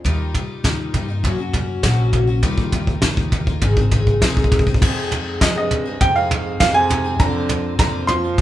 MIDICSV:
0, 0, Header, 1, 6, 480
1, 0, Start_track
1, 0, Tempo, 595238
1, 43, Time_signature, 4, 2, 24, 8
1, 6784, End_track
2, 0, Start_track
2, 0, Title_t, "Upright piano"
2, 0, Program_c, 0, 0
2, 4372, Note_on_c, 0, 75, 74
2, 4484, Note_off_c, 0, 75, 0
2, 4496, Note_on_c, 0, 75, 81
2, 4847, Note_on_c, 0, 79, 99
2, 4862, Note_off_c, 0, 75, 0
2, 4958, Note_off_c, 0, 79, 0
2, 4965, Note_on_c, 0, 77, 92
2, 5311, Note_off_c, 0, 77, 0
2, 5323, Note_on_c, 0, 77, 105
2, 5436, Note_off_c, 0, 77, 0
2, 5438, Note_on_c, 0, 80, 116
2, 5804, Note_on_c, 0, 82, 97
2, 5812, Note_off_c, 0, 80, 0
2, 6272, Note_off_c, 0, 82, 0
2, 6285, Note_on_c, 0, 82, 97
2, 6511, Note_on_c, 0, 84, 98
2, 6531, Note_off_c, 0, 82, 0
2, 6784, Note_off_c, 0, 84, 0
2, 6784, End_track
3, 0, Start_track
3, 0, Title_t, "Twelve-string acoustic guitar"
3, 0, Program_c, 1, 25
3, 36, Note_on_c, 1, 51, 82
3, 43, Note_on_c, 1, 55, 79
3, 47, Note_on_c, 1, 58, 96
3, 48, Note_on_c, 1, 63, 104
3, 50, Note_on_c, 1, 65, 93
3, 267, Note_off_c, 1, 55, 0
3, 277, Note_off_c, 1, 58, 0
3, 277, Note_on_c, 1, 55, 58
3, 280, Note_off_c, 1, 51, 0
3, 283, Note_off_c, 1, 63, 0
3, 286, Note_on_c, 1, 58, 58
3, 287, Note_off_c, 1, 65, 0
3, 293, Note_on_c, 1, 63, 62
3, 298, Note_on_c, 1, 65, 69
3, 515, Note_off_c, 1, 55, 0
3, 520, Note_off_c, 1, 58, 0
3, 521, Note_off_c, 1, 63, 0
3, 522, Note_on_c, 1, 51, 78
3, 524, Note_off_c, 1, 65, 0
3, 525, Note_on_c, 1, 55, 70
3, 530, Note_on_c, 1, 58, 81
3, 531, Note_on_c, 1, 63, 76
3, 534, Note_on_c, 1, 65, 74
3, 753, Note_off_c, 1, 55, 0
3, 760, Note_off_c, 1, 58, 0
3, 762, Note_on_c, 1, 55, 60
3, 763, Note_off_c, 1, 51, 0
3, 768, Note_off_c, 1, 63, 0
3, 769, Note_off_c, 1, 65, 0
3, 770, Note_on_c, 1, 58, 62
3, 779, Note_on_c, 1, 63, 71
3, 782, Note_on_c, 1, 65, 64
3, 866, Note_off_c, 1, 65, 0
3, 875, Note_on_c, 1, 65, 56
3, 878, Note_off_c, 1, 63, 0
3, 883, Note_off_c, 1, 55, 0
3, 887, Note_off_c, 1, 58, 0
3, 887, Note_on_c, 1, 63, 53
3, 899, Note_on_c, 1, 58, 48
3, 1000, Note_off_c, 1, 65, 0
3, 1001, Note_on_c, 1, 42, 86
3, 1002, Note_off_c, 1, 58, 0
3, 1005, Note_on_c, 1, 49, 87
3, 1006, Note_off_c, 1, 63, 0
3, 1008, Note_on_c, 1, 54, 89
3, 1012, Note_on_c, 1, 58, 98
3, 1015, Note_on_c, 1, 61, 97
3, 1019, Note_on_c, 1, 66, 87
3, 1107, Note_off_c, 1, 66, 0
3, 1116, Note_on_c, 1, 66, 55
3, 1117, Note_off_c, 1, 61, 0
3, 1122, Note_off_c, 1, 58, 0
3, 1123, Note_off_c, 1, 42, 0
3, 1125, Note_off_c, 1, 49, 0
3, 1126, Note_off_c, 1, 54, 0
3, 1127, Note_on_c, 1, 61, 49
3, 1131, Note_on_c, 1, 58, 43
3, 1138, Note_on_c, 1, 54, 48
3, 1231, Note_off_c, 1, 54, 0
3, 1237, Note_off_c, 1, 58, 0
3, 1240, Note_on_c, 1, 54, 66
3, 1241, Note_off_c, 1, 66, 0
3, 1244, Note_off_c, 1, 61, 0
3, 1247, Note_on_c, 1, 58, 74
3, 1253, Note_on_c, 1, 61, 72
3, 1260, Note_on_c, 1, 66, 72
3, 1475, Note_off_c, 1, 58, 0
3, 1476, Note_off_c, 1, 54, 0
3, 1476, Note_on_c, 1, 42, 88
3, 1478, Note_off_c, 1, 61, 0
3, 1481, Note_off_c, 1, 66, 0
3, 1481, Note_on_c, 1, 49, 98
3, 1485, Note_on_c, 1, 58, 90
3, 1486, Note_on_c, 1, 54, 103
3, 1487, Note_on_c, 1, 61, 95
3, 1491, Note_on_c, 1, 66, 94
3, 1824, Note_off_c, 1, 66, 0
3, 1831, Note_off_c, 1, 61, 0
3, 1834, Note_on_c, 1, 66, 64
3, 1837, Note_off_c, 1, 58, 0
3, 1841, Note_off_c, 1, 42, 0
3, 1841, Note_on_c, 1, 61, 52
3, 1844, Note_off_c, 1, 49, 0
3, 1844, Note_off_c, 1, 54, 0
3, 1847, Note_on_c, 1, 58, 53
3, 1854, Note_on_c, 1, 54, 44
3, 1957, Note_on_c, 1, 51, 90
3, 1958, Note_off_c, 1, 58, 0
3, 1959, Note_off_c, 1, 54, 0
3, 1960, Note_off_c, 1, 66, 0
3, 1962, Note_on_c, 1, 55, 103
3, 1964, Note_off_c, 1, 61, 0
3, 1967, Note_on_c, 1, 58, 93
3, 1969, Note_on_c, 1, 63, 97
3, 1971, Note_on_c, 1, 65, 107
3, 2190, Note_off_c, 1, 55, 0
3, 2198, Note_off_c, 1, 58, 0
3, 2199, Note_on_c, 1, 55, 59
3, 2202, Note_off_c, 1, 51, 0
3, 2205, Note_off_c, 1, 63, 0
3, 2208, Note_on_c, 1, 58, 70
3, 2209, Note_off_c, 1, 65, 0
3, 2214, Note_on_c, 1, 63, 71
3, 2218, Note_on_c, 1, 65, 65
3, 2430, Note_off_c, 1, 55, 0
3, 2435, Note_on_c, 1, 51, 85
3, 2436, Note_off_c, 1, 58, 0
3, 2439, Note_on_c, 1, 55, 79
3, 2440, Note_off_c, 1, 65, 0
3, 2441, Note_off_c, 1, 63, 0
3, 2446, Note_on_c, 1, 58, 82
3, 2450, Note_on_c, 1, 65, 90
3, 2451, Note_on_c, 1, 63, 83
3, 2665, Note_off_c, 1, 55, 0
3, 2675, Note_off_c, 1, 58, 0
3, 2675, Note_on_c, 1, 55, 66
3, 2680, Note_off_c, 1, 63, 0
3, 2681, Note_off_c, 1, 51, 0
3, 2685, Note_on_c, 1, 58, 72
3, 2687, Note_off_c, 1, 65, 0
3, 2690, Note_on_c, 1, 63, 64
3, 2696, Note_on_c, 1, 65, 78
3, 2790, Note_off_c, 1, 65, 0
3, 2800, Note_off_c, 1, 63, 0
3, 2800, Note_on_c, 1, 65, 70
3, 2801, Note_off_c, 1, 55, 0
3, 2806, Note_off_c, 1, 58, 0
3, 2810, Note_on_c, 1, 63, 50
3, 2818, Note_on_c, 1, 58, 44
3, 2918, Note_off_c, 1, 63, 0
3, 2919, Note_on_c, 1, 44, 82
3, 2919, Note_on_c, 1, 51, 96
3, 2919, Note_on_c, 1, 56, 92
3, 2921, Note_off_c, 1, 58, 0
3, 2923, Note_off_c, 1, 65, 0
3, 2924, Note_on_c, 1, 60, 92
3, 2928, Note_on_c, 1, 63, 92
3, 2931, Note_on_c, 1, 68, 92
3, 3031, Note_off_c, 1, 68, 0
3, 3038, Note_off_c, 1, 63, 0
3, 3040, Note_on_c, 1, 68, 62
3, 3043, Note_off_c, 1, 44, 0
3, 3043, Note_off_c, 1, 51, 0
3, 3043, Note_off_c, 1, 56, 0
3, 3044, Note_off_c, 1, 60, 0
3, 3048, Note_on_c, 1, 63, 50
3, 3053, Note_on_c, 1, 60, 49
3, 3059, Note_on_c, 1, 56, 47
3, 3146, Note_off_c, 1, 56, 0
3, 3154, Note_off_c, 1, 60, 0
3, 3156, Note_on_c, 1, 56, 72
3, 3161, Note_off_c, 1, 63, 0
3, 3164, Note_off_c, 1, 68, 0
3, 3164, Note_on_c, 1, 60, 77
3, 3170, Note_on_c, 1, 63, 85
3, 3174, Note_on_c, 1, 68, 80
3, 3402, Note_off_c, 1, 56, 0
3, 3406, Note_off_c, 1, 60, 0
3, 3406, Note_off_c, 1, 63, 0
3, 3407, Note_on_c, 1, 51, 99
3, 3409, Note_on_c, 1, 44, 96
3, 3411, Note_off_c, 1, 68, 0
3, 3412, Note_on_c, 1, 56, 110
3, 3414, Note_on_c, 1, 60, 105
3, 3416, Note_on_c, 1, 63, 99
3, 3422, Note_on_c, 1, 68, 99
3, 3754, Note_off_c, 1, 68, 0
3, 3762, Note_off_c, 1, 63, 0
3, 3763, Note_on_c, 1, 68, 62
3, 3767, Note_off_c, 1, 51, 0
3, 3768, Note_off_c, 1, 44, 0
3, 3768, Note_off_c, 1, 60, 0
3, 3770, Note_off_c, 1, 56, 0
3, 3772, Note_on_c, 1, 63, 57
3, 3778, Note_on_c, 1, 60, 52
3, 3783, Note_on_c, 1, 56, 56
3, 3881, Note_off_c, 1, 56, 0
3, 3883, Note_on_c, 1, 41, 93
3, 3885, Note_off_c, 1, 68, 0
3, 3886, Note_off_c, 1, 60, 0
3, 3887, Note_on_c, 1, 51, 102
3, 3889, Note_off_c, 1, 63, 0
3, 3889, Note_on_c, 1, 48, 90
3, 3891, Note_on_c, 1, 56, 101
3, 3895, Note_on_c, 1, 60, 103
3, 3899, Note_on_c, 1, 68, 110
3, 4111, Note_off_c, 1, 51, 0
3, 4121, Note_off_c, 1, 56, 0
3, 4121, Note_on_c, 1, 51, 74
3, 4125, Note_off_c, 1, 41, 0
3, 4126, Note_off_c, 1, 60, 0
3, 4128, Note_off_c, 1, 48, 0
3, 4131, Note_on_c, 1, 56, 69
3, 4133, Note_off_c, 1, 68, 0
3, 4136, Note_on_c, 1, 60, 77
3, 4142, Note_on_c, 1, 68, 86
3, 4364, Note_off_c, 1, 51, 0
3, 4367, Note_off_c, 1, 56, 0
3, 4367, Note_off_c, 1, 60, 0
3, 4370, Note_on_c, 1, 41, 79
3, 4370, Note_on_c, 1, 48, 80
3, 4371, Note_off_c, 1, 68, 0
3, 4375, Note_on_c, 1, 51, 79
3, 4376, Note_on_c, 1, 56, 85
3, 4377, Note_on_c, 1, 60, 76
3, 4381, Note_on_c, 1, 68, 82
3, 4712, Note_off_c, 1, 68, 0
3, 4722, Note_on_c, 1, 68, 61
3, 4724, Note_off_c, 1, 60, 0
3, 4728, Note_off_c, 1, 41, 0
3, 4728, Note_off_c, 1, 48, 0
3, 4731, Note_off_c, 1, 51, 0
3, 4731, Note_off_c, 1, 56, 0
3, 4733, Note_on_c, 1, 60, 54
3, 4740, Note_on_c, 1, 56, 53
3, 4741, Note_on_c, 1, 51, 49
3, 4954, Note_off_c, 1, 68, 0
3, 4964, Note_off_c, 1, 60, 0
3, 4964, Note_on_c, 1, 68, 53
3, 4966, Note_off_c, 1, 56, 0
3, 4974, Note_off_c, 1, 51, 0
3, 4974, Note_on_c, 1, 60, 52
3, 4975, Note_on_c, 1, 56, 45
3, 4984, Note_on_c, 1, 51, 50
3, 5078, Note_off_c, 1, 51, 0
3, 5083, Note_off_c, 1, 56, 0
3, 5085, Note_off_c, 1, 68, 0
3, 5087, Note_on_c, 1, 51, 66
3, 5090, Note_off_c, 1, 60, 0
3, 5093, Note_on_c, 1, 56, 65
3, 5101, Note_on_c, 1, 60, 64
3, 5109, Note_on_c, 1, 68, 68
3, 5317, Note_off_c, 1, 51, 0
3, 5320, Note_off_c, 1, 56, 0
3, 5321, Note_off_c, 1, 60, 0
3, 5322, Note_on_c, 1, 41, 96
3, 5324, Note_on_c, 1, 48, 91
3, 5325, Note_off_c, 1, 68, 0
3, 5326, Note_on_c, 1, 51, 86
3, 5329, Note_on_c, 1, 56, 88
3, 5331, Note_on_c, 1, 60, 94
3, 5334, Note_on_c, 1, 68, 103
3, 5550, Note_off_c, 1, 51, 0
3, 5558, Note_off_c, 1, 56, 0
3, 5560, Note_on_c, 1, 51, 73
3, 5563, Note_off_c, 1, 41, 0
3, 5564, Note_off_c, 1, 60, 0
3, 5565, Note_off_c, 1, 48, 0
3, 5568, Note_on_c, 1, 56, 73
3, 5570, Note_off_c, 1, 68, 0
3, 5574, Note_on_c, 1, 60, 72
3, 5582, Note_on_c, 1, 68, 84
3, 5671, Note_off_c, 1, 68, 0
3, 5679, Note_off_c, 1, 60, 0
3, 5681, Note_on_c, 1, 68, 55
3, 5682, Note_off_c, 1, 51, 0
3, 5687, Note_off_c, 1, 56, 0
3, 5689, Note_on_c, 1, 60, 59
3, 5697, Note_on_c, 1, 56, 55
3, 5702, Note_on_c, 1, 51, 50
3, 5800, Note_on_c, 1, 41, 89
3, 5801, Note_off_c, 1, 60, 0
3, 5802, Note_off_c, 1, 51, 0
3, 5802, Note_on_c, 1, 50, 88
3, 5803, Note_off_c, 1, 68, 0
3, 5806, Note_off_c, 1, 56, 0
3, 5806, Note_on_c, 1, 53, 104
3, 5809, Note_on_c, 1, 58, 98
3, 5811, Note_on_c, 1, 60, 99
3, 5811, Note_on_c, 1, 65, 102
3, 6029, Note_off_c, 1, 53, 0
3, 6036, Note_off_c, 1, 58, 0
3, 6038, Note_on_c, 1, 53, 68
3, 6041, Note_off_c, 1, 60, 0
3, 6042, Note_off_c, 1, 41, 0
3, 6043, Note_off_c, 1, 50, 0
3, 6046, Note_on_c, 1, 58, 66
3, 6048, Note_off_c, 1, 65, 0
3, 6050, Note_on_c, 1, 60, 62
3, 6057, Note_on_c, 1, 65, 73
3, 6277, Note_off_c, 1, 53, 0
3, 6279, Note_off_c, 1, 58, 0
3, 6279, Note_on_c, 1, 41, 76
3, 6280, Note_off_c, 1, 60, 0
3, 6283, Note_off_c, 1, 65, 0
3, 6284, Note_on_c, 1, 50, 76
3, 6287, Note_on_c, 1, 53, 88
3, 6289, Note_on_c, 1, 58, 90
3, 6290, Note_on_c, 1, 60, 91
3, 6293, Note_on_c, 1, 65, 86
3, 6635, Note_off_c, 1, 65, 0
3, 6640, Note_off_c, 1, 60, 0
3, 6641, Note_off_c, 1, 41, 0
3, 6643, Note_off_c, 1, 50, 0
3, 6644, Note_on_c, 1, 65, 53
3, 6645, Note_off_c, 1, 53, 0
3, 6646, Note_off_c, 1, 58, 0
3, 6650, Note_on_c, 1, 60, 51
3, 6660, Note_on_c, 1, 58, 51
3, 6668, Note_on_c, 1, 53, 52
3, 6784, Note_off_c, 1, 53, 0
3, 6784, Note_off_c, 1, 58, 0
3, 6784, Note_off_c, 1, 60, 0
3, 6784, Note_off_c, 1, 65, 0
3, 6784, End_track
4, 0, Start_track
4, 0, Title_t, "Trombone"
4, 0, Program_c, 2, 57
4, 4367, Note_on_c, 2, 44, 70
4, 4478, Note_off_c, 2, 44, 0
4, 4482, Note_on_c, 2, 43, 74
4, 4819, Note_off_c, 2, 43, 0
4, 4844, Note_on_c, 2, 48, 81
4, 4948, Note_off_c, 2, 48, 0
4, 4953, Note_on_c, 2, 44, 82
4, 5294, Note_off_c, 2, 44, 0
4, 5320, Note_on_c, 2, 44, 80
4, 5434, Note_off_c, 2, 44, 0
4, 5447, Note_on_c, 2, 48, 90
4, 5781, Note_off_c, 2, 48, 0
4, 5791, Note_on_c, 2, 50, 104
4, 6245, Note_off_c, 2, 50, 0
4, 6271, Note_on_c, 2, 50, 84
4, 6500, Note_off_c, 2, 50, 0
4, 6513, Note_on_c, 2, 53, 99
4, 6784, Note_off_c, 2, 53, 0
4, 6784, End_track
5, 0, Start_track
5, 0, Title_t, "Upright bass"
5, 0, Program_c, 3, 32
5, 37, Note_on_c, 3, 39, 99
5, 256, Note_off_c, 3, 39, 0
5, 513, Note_on_c, 3, 39, 85
5, 735, Note_off_c, 3, 39, 0
5, 756, Note_on_c, 3, 43, 97
5, 977, Note_off_c, 3, 43, 0
5, 996, Note_on_c, 3, 42, 85
5, 1449, Note_off_c, 3, 42, 0
5, 1477, Note_on_c, 3, 34, 102
5, 1929, Note_off_c, 3, 34, 0
5, 1956, Note_on_c, 3, 39, 103
5, 2409, Note_off_c, 3, 39, 0
5, 2435, Note_on_c, 3, 39, 103
5, 2889, Note_off_c, 3, 39, 0
5, 2918, Note_on_c, 3, 32, 99
5, 3371, Note_off_c, 3, 32, 0
5, 3399, Note_on_c, 3, 36, 92
5, 3619, Note_off_c, 3, 36, 0
5, 3885, Note_on_c, 3, 41, 105
5, 4334, Note_off_c, 3, 41, 0
5, 4364, Note_on_c, 3, 53, 89
5, 4581, Note_off_c, 3, 53, 0
5, 4846, Note_on_c, 3, 41, 98
5, 5294, Note_off_c, 3, 41, 0
5, 5323, Note_on_c, 3, 41, 113
5, 5771, Note_off_c, 3, 41, 0
5, 5801, Note_on_c, 3, 41, 108
5, 6250, Note_off_c, 3, 41, 0
5, 6280, Note_on_c, 3, 41, 110
5, 6729, Note_off_c, 3, 41, 0
5, 6758, Note_on_c, 3, 41, 102
5, 6784, Note_off_c, 3, 41, 0
5, 6784, End_track
6, 0, Start_track
6, 0, Title_t, "Drums"
6, 39, Note_on_c, 9, 36, 66
6, 44, Note_on_c, 9, 43, 79
6, 119, Note_off_c, 9, 36, 0
6, 125, Note_off_c, 9, 43, 0
6, 279, Note_on_c, 9, 36, 78
6, 280, Note_on_c, 9, 43, 77
6, 359, Note_off_c, 9, 36, 0
6, 361, Note_off_c, 9, 43, 0
6, 518, Note_on_c, 9, 36, 85
6, 519, Note_on_c, 9, 38, 101
6, 519, Note_on_c, 9, 43, 80
6, 599, Note_off_c, 9, 36, 0
6, 600, Note_off_c, 9, 38, 0
6, 600, Note_off_c, 9, 43, 0
6, 757, Note_on_c, 9, 43, 76
6, 758, Note_on_c, 9, 36, 76
6, 838, Note_off_c, 9, 36, 0
6, 838, Note_off_c, 9, 43, 0
6, 999, Note_on_c, 9, 36, 83
6, 1004, Note_on_c, 9, 43, 85
6, 1079, Note_off_c, 9, 36, 0
6, 1085, Note_off_c, 9, 43, 0
6, 1238, Note_on_c, 9, 36, 77
6, 1240, Note_on_c, 9, 43, 89
6, 1319, Note_off_c, 9, 36, 0
6, 1321, Note_off_c, 9, 43, 0
6, 1478, Note_on_c, 9, 36, 85
6, 1478, Note_on_c, 9, 38, 116
6, 1478, Note_on_c, 9, 43, 83
6, 1558, Note_off_c, 9, 36, 0
6, 1559, Note_off_c, 9, 38, 0
6, 1559, Note_off_c, 9, 43, 0
6, 1717, Note_on_c, 9, 36, 100
6, 1717, Note_on_c, 9, 43, 84
6, 1797, Note_off_c, 9, 43, 0
6, 1798, Note_off_c, 9, 36, 0
6, 1958, Note_on_c, 9, 36, 89
6, 1958, Note_on_c, 9, 43, 77
6, 2038, Note_off_c, 9, 36, 0
6, 2038, Note_off_c, 9, 43, 0
6, 2077, Note_on_c, 9, 36, 106
6, 2158, Note_off_c, 9, 36, 0
6, 2196, Note_on_c, 9, 43, 82
6, 2197, Note_on_c, 9, 36, 89
6, 2277, Note_off_c, 9, 36, 0
6, 2277, Note_off_c, 9, 43, 0
6, 2317, Note_on_c, 9, 36, 98
6, 2398, Note_off_c, 9, 36, 0
6, 2433, Note_on_c, 9, 38, 102
6, 2433, Note_on_c, 9, 43, 83
6, 2437, Note_on_c, 9, 36, 98
6, 2514, Note_off_c, 9, 38, 0
6, 2514, Note_off_c, 9, 43, 0
6, 2518, Note_off_c, 9, 36, 0
6, 2558, Note_on_c, 9, 36, 105
6, 2638, Note_off_c, 9, 36, 0
6, 2678, Note_on_c, 9, 36, 106
6, 2679, Note_on_c, 9, 43, 85
6, 2759, Note_off_c, 9, 36, 0
6, 2759, Note_off_c, 9, 43, 0
6, 2798, Note_on_c, 9, 36, 99
6, 2879, Note_off_c, 9, 36, 0
6, 2915, Note_on_c, 9, 43, 87
6, 2918, Note_on_c, 9, 36, 101
6, 2996, Note_off_c, 9, 43, 0
6, 2998, Note_off_c, 9, 36, 0
6, 3039, Note_on_c, 9, 36, 115
6, 3119, Note_off_c, 9, 36, 0
6, 3156, Note_on_c, 9, 43, 79
6, 3160, Note_on_c, 9, 36, 110
6, 3237, Note_off_c, 9, 43, 0
6, 3240, Note_off_c, 9, 36, 0
6, 3281, Note_on_c, 9, 36, 96
6, 3362, Note_off_c, 9, 36, 0
6, 3401, Note_on_c, 9, 38, 122
6, 3401, Note_on_c, 9, 43, 93
6, 3402, Note_on_c, 9, 36, 113
6, 3481, Note_off_c, 9, 38, 0
6, 3481, Note_off_c, 9, 43, 0
6, 3483, Note_off_c, 9, 36, 0
6, 3523, Note_on_c, 9, 36, 107
6, 3582, Note_off_c, 9, 36, 0
6, 3582, Note_on_c, 9, 36, 102
6, 3643, Note_off_c, 9, 36, 0
6, 3643, Note_on_c, 9, 36, 120
6, 3643, Note_on_c, 9, 43, 88
6, 3703, Note_off_c, 9, 36, 0
6, 3703, Note_on_c, 9, 36, 111
6, 3724, Note_off_c, 9, 43, 0
6, 3764, Note_off_c, 9, 36, 0
6, 3764, Note_on_c, 9, 36, 104
6, 3826, Note_off_c, 9, 36, 0
6, 3826, Note_on_c, 9, 36, 111
6, 3885, Note_off_c, 9, 36, 0
6, 3885, Note_on_c, 9, 36, 120
6, 3886, Note_on_c, 9, 43, 100
6, 3886, Note_on_c, 9, 49, 108
6, 3966, Note_off_c, 9, 36, 0
6, 3966, Note_off_c, 9, 43, 0
6, 3966, Note_off_c, 9, 49, 0
6, 4126, Note_on_c, 9, 43, 84
6, 4207, Note_off_c, 9, 43, 0
6, 4364, Note_on_c, 9, 38, 116
6, 4364, Note_on_c, 9, 43, 86
6, 4365, Note_on_c, 9, 36, 118
6, 4445, Note_off_c, 9, 38, 0
6, 4445, Note_off_c, 9, 43, 0
6, 4446, Note_off_c, 9, 36, 0
6, 4604, Note_on_c, 9, 43, 80
6, 4684, Note_off_c, 9, 43, 0
6, 4845, Note_on_c, 9, 43, 89
6, 4846, Note_on_c, 9, 36, 111
6, 4925, Note_off_c, 9, 43, 0
6, 4926, Note_off_c, 9, 36, 0
6, 5088, Note_on_c, 9, 43, 86
6, 5168, Note_off_c, 9, 43, 0
6, 5324, Note_on_c, 9, 38, 115
6, 5324, Note_on_c, 9, 43, 89
6, 5325, Note_on_c, 9, 36, 117
6, 5405, Note_off_c, 9, 38, 0
6, 5405, Note_off_c, 9, 43, 0
6, 5406, Note_off_c, 9, 36, 0
6, 5567, Note_on_c, 9, 43, 96
6, 5648, Note_off_c, 9, 43, 0
6, 5804, Note_on_c, 9, 36, 117
6, 5804, Note_on_c, 9, 43, 81
6, 5885, Note_off_c, 9, 36, 0
6, 5885, Note_off_c, 9, 43, 0
6, 6042, Note_on_c, 9, 43, 94
6, 6123, Note_off_c, 9, 43, 0
6, 6281, Note_on_c, 9, 36, 127
6, 6281, Note_on_c, 9, 38, 127
6, 6281, Note_on_c, 9, 43, 96
6, 6362, Note_off_c, 9, 36, 0
6, 6362, Note_off_c, 9, 38, 0
6, 6362, Note_off_c, 9, 43, 0
6, 6519, Note_on_c, 9, 43, 88
6, 6600, Note_off_c, 9, 43, 0
6, 6759, Note_on_c, 9, 43, 91
6, 6760, Note_on_c, 9, 36, 119
6, 6784, Note_off_c, 9, 36, 0
6, 6784, Note_off_c, 9, 43, 0
6, 6784, End_track
0, 0, End_of_file